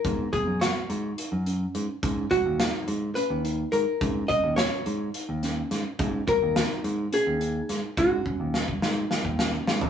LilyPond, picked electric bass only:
\new Staff \with { instrumentName = "Picked electric bass" } { \clef bass \time 7/8 \key fis \mixolydian \tempo 4 = 106 gis,8 r16 fis,8 r16 gis,8 r16 fis,8. gis,16 r16 | gis,8 r16 dis,8 r16 gis,8 r16 dis,8. gis,16 r16 | gis,8 r16 dis,8 r16 gis,8 r16 dis,8. gis,16 r16 | gis,8 r16 dis,8 r16 gis,8 r16 dis,8. gis,16 r16 |
gis,8 r16 dis,8 r16 gis,8 r16 dis,8. gis,16 r16 | }